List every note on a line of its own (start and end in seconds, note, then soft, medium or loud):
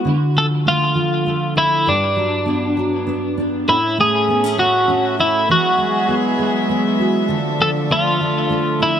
0.00 0.11 G#3 soft
0.00 0.11 B3 soft
0.00 0.11 F#4 medium
0.05 1.86 D3 medium
0.35 0.94 F3 soft
0.35 0.46 A4 medium
0.65 1.25 A3 soft
0.65 1.53 F4 medium
0.95 1.92 F3 soft
1.26 1.92 A3 soft
1.56 1.92 E4 soft
1.56 1.88 E4 medium
1.86 3.67 G2 medium
1.86 3.35 D4 medium
2.16 2.76 F#3 soft
2.46 3.05 B3 soft
2.77 3.74 F#3 soft
3.07 3.74 B3 soft
3.38 3.74 D4 soft
3.68 5.49 A2 medium
3.68 5.48 A3 medium
3.68 5.48 C#4 medium
3.68 3.97 E4 medium
3.68 9.00 E5 medium
3.98 4.57 A3 soft
3.98 4.59 G#4 medium
4.28 4.44 B3 soft
4.44 4.86 C#4 soft
4.58 5.55 A3 soft
4.58 5.16 F#4 medium
4.88 5.55 C#4 soft
5.19 6.99 E4 soft
5.19 5.48 E4 medium
5.49 7.28 E3 medium
5.49 7.28 F#3 medium
5.49 7.28 G#3 medium
5.49 7.28 B3 medium
5.49 6.14 F#4 medium
5.49 7.28 G#4 medium
5.78 6.38 G#3 soft
6.08 6.68 B3 soft
6.39 7.36 G#3 soft
6.69 7.36 B3 soft
6.99 7.36 F#4 soft
7.28 9.00 D3 medium
7.28 9.00 F3 medium
7.28 9.00 A3 medium
7.28 9.00 D4 medium
7.28 9.00 A4 medium
7.59 8.19 F3 soft
7.59 7.70 A4 medium
7.90 8.49 A3 soft
7.90 8.82 F4 medium
8.21 9.00 F3 soft
8.50 9.00 A3 soft
8.80 9.00 E4 soft
8.80 9.00 E4 medium